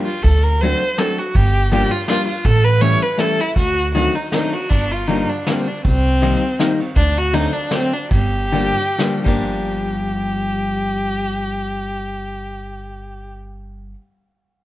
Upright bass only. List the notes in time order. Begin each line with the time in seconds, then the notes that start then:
0.24 D2
1.35 G1
2.45 A1
3.56 D2
4.71 G1
5.85 C2
6.96 D2
8.11 G1
9.26 G1